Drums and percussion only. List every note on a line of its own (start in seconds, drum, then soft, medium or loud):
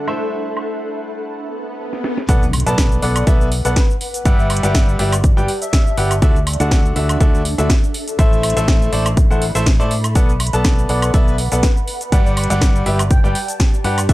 0.08 high woodblock medium
0.57 high woodblock medium
1.93 snare soft
2.04 snare medium
2.17 snare medium
2.29 kick loud
2.29 closed hi-hat medium
2.29 cabasa medium
2.43 cabasa soft
2.53 open hi-hat loud
2.53 high woodblock medium
2.60 closed hi-hat medium
2.67 closed hi-hat medium
2.67 cabasa medium
2.78 kick loud
2.78 snare loud
2.78 closed hi-hat medium
2.78 cabasa medium
2.92 cabasa soft
3.02 open hi-hat loud
3.16 closed hi-hat medium
3.16 cabasa medium
3.16 high woodblock medium
3.27 kick loud
3.27 closed hi-hat medium
3.27 cabasa medium
3.41 cabasa soft
3.52 open hi-hat loud
3.65 closed hi-hat medium
3.65 cabasa medium
3.76 kick loud
3.76 snare loud
3.76 closed hi-hat medium
3.76 cabasa medium
3.90 cabasa soft
4.01 open hi-hat medium
4.14 closed hi-hat medium
4.14 cabasa medium
4.25 kick loud
4.25 closed hi-hat medium
4.25 cabasa medium
4.39 cabasa soft
4.50 open hi-hat loud
4.50 high woodblock medium
4.57 closed hi-hat medium
4.63 closed hi-hat medium
4.63 cabasa medium
4.75 kick loud
4.75 snare loud
4.75 closed hi-hat medium
4.75 cabasa medium
4.89 cabasa soft
4.99 open hi-hat loud
5.12 closed hi-hat medium
5.12 cabasa medium
5.12 high woodblock medium
5.24 kick loud
5.24 closed hi-hat medium
5.24 cabasa medium
5.38 cabasa soft
5.48 open hi-hat loud
5.62 closed hi-hat medium
5.62 cabasa medium
5.73 kick loud
5.73 snare loud
5.73 closed hi-hat medium
5.73 cabasa medium
5.87 cabasa soft
5.97 open hi-hat medium
6.11 closed hi-hat medium
6.11 cabasa medium
6.11 high woodblock medium
6.22 kick loud
6.22 closed hi-hat medium
6.22 cabasa medium
6.36 cabasa soft
6.47 open hi-hat loud
6.47 high woodblock medium
6.53 closed hi-hat medium
6.60 closed hi-hat soft
6.60 cabasa medium
6.71 kick loud
6.71 snare loud
6.71 closed hi-hat medium
6.71 cabasa medium
6.86 cabasa soft
6.96 open hi-hat loud
7.09 closed hi-hat medium
7.09 cabasa medium
7.09 high woodblock medium
7.21 kick loud
7.21 closed hi-hat medium
7.21 cabasa medium
7.35 cabasa soft
7.45 open hi-hat loud
7.59 closed hi-hat medium
7.59 cabasa medium
7.70 kick loud
7.70 snare loud
7.70 closed hi-hat medium
7.70 cabasa medium
7.84 cabasa soft
7.94 open hi-hat loud
8.08 closed hi-hat medium
8.08 cabasa medium
8.19 kick loud
8.19 closed hi-hat medium
8.19 cabasa medium
8.33 cabasa soft
8.43 open hi-hat loud
8.43 high woodblock medium
8.50 closed hi-hat medium
8.57 closed hi-hat soft
8.57 cabasa medium
8.68 kick loud
8.68 snare loud
8.68 closed hi-hat medium
8.68 cabasa medium
8.82 cabasa soft
8.93 open hi-hat loud
9.06 closed hi-hat medium
9.06 cabasa medium
9.06 high woodblock medium
9.17 kick loud
9.17 closed hi-hat medium
9.17 cabasa medium
9.31 cabasa soft
9.42 open hi-hat loud
9.55 closed hi-hat medium
9.55 cabasa medium
9.66 kick loud
9.66 snare loud
9.66 closed hi-hat medium
9.66 cabasa medium
9.80 cabasa soft
9.91 open hi-hat medium
10.04 closed hi-hat soft
10.04 cabasa medium
10.04 high woodblock medium
10.15 kick loud
10.15 closed hi-hat medium
10.15 cabasa medium
10.29 cabasa soft
10.40 open hi-hat loud
10.40 high woodblock medium
10.47 closed hi-hat medium
10.53 closed hi-hat soft
10.53 cabasa medium
10.64 kick loud
10.64 snare loud
10.64 closed hi-hat medium
10.64 cabasa medium
10.79 cabasa soft
10.89 open hi-hat loud
11.02 closed hi-hat soft
11.02 cabasa medium
11.02 high woodblock medium
11.14 kick loud
11.14 closed hi-hat medium
11.14 cabasa medium
11.28 cabasa soft
11.38 open hi-hat loud
11.52 closed hi-hat medium
11.52 cabasa medium
11.63 kick loud
11.63 snare loud
11.63 closed hi-hat medium
11.63 cabasa medium
11.77 cabasa soft
11.88 open hi-hat medium
12.01 closed hi-hat medium
12.01 cabasa medium
12.12 kick loud
12.12 closed hi-hat medium
12.12 cabasa medium
12.26 cabasa soft
12.37 open hi-hat loud
12.37 high woodblock medium
12.44 closed hi-hat medium
12.50 closed hi-hat medium
12.50 cabasa medium
12.61 kick loud
12.61 snare loud
12.61 closed hi-hat medium
12.61 cabasa medium
12.76 cabasa soft
12.86 open hi-hat medium
12.99 closed hi-hat medium
12.99 cabasa medium
12.99 high woodblock medium
13.11 kick loud
13.11 closed hi-hat medium
13.11 cabasa medium
13.25 cabasa soft
13.35 open hi-hat loud
13.48 closed hi-hat medium
13.48 cabasa medium
13.60 kick loud
13.60 snare loud
13.60 closed hi-hat medium
13.60 cabasa medium
13.74 cabasa soft
13.84 open hi-hat medium
13.98 closed hi-hat medium
13.98 cabasa medium
13.98 high woodblock medium
14.09 kick loud
14.09 closed hi-hat medium
14.09 cabasa medium